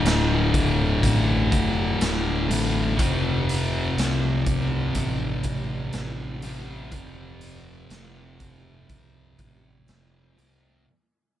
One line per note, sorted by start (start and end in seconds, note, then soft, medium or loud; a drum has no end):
0.00 2.47 D2 medium
0.00 2.47 A2 medium
0.00 2.48 D3 loud
0.04 0.98 D1 medium
0.04 snare loud
0.04 closed hi-hat medium
0.54 kick medium
0.54 closed hi-hat medium
1.03 1.50 A1 medium
1.03 kick medium
1.03 closed hi-hat medium
1.52 1.99 F1 medium
1.52 kick medium
1.52 closed hi-hat medium
2.00 2.47 D1 medium
2.00 snare loud
2.00 closed hi-hat medium
2.49 2.97 A1 medium
2.49 2.97 D2 medium
2.49 2.96 A2 medium
2.49 2.95 D3 medium
2.49 closed hi-hat medium
2.98 3.93 F1 medium
2.98 6.44 F2 loud
2.98 6.41 C3 loud
2.98 6.42 F3 loud
2.98 kick loud
2.98 closed hi-hat loud
3.49 closed hi-hat medium
3.97 4.92 C2 medium
3.97 snare loud
3.97 closed hi-hat medium
4.46 kick medium
4.46 closed hi-hat medium
4.95 5.90 A1 medium
4.95 kick medium
4.95 closed hi-hat medium
5.43 kick medium
5.43 closed hi-hat medium
5.93 6.89 A1 medium
5.93 snare loud
5.93 closed hi-hat medium
6.42 6.91 F2 medium
6.42 6.90 C3 medium
6.42 6.94 F3 medium
6.42 closed hi-hat medium
6.92 7.87 F1 medium
6.92 10.35 F2 medium
6.92 10.35 C3 medium
6.92 10.36 F3 medium
6.92 kick loud
6.92 closed hi-hat medium
7.41 closed hi-hat medium
7.90 8.85 F1 medium
7.90 snare loud
7.90 closed hi-hat medium
8.40 kick medium
8.40 closed hi-hat medium
8.89 9.37 C2 medium
8.89 kick medium
8.89 closed hi-hat medium
9.39 9.87 A1 medium
9.39 kick medium
9.39 closed hi-hat medium
9.88 10.35 F1 medium
9.88 snare loud
9.88 closed hi-hat medium
10.37 10.85 C2 medium
10.37 10.85 F2 medium
10.37 10.85 C3 medium
10.37 10.84 F3 medium
10.37 closed hi-hat medium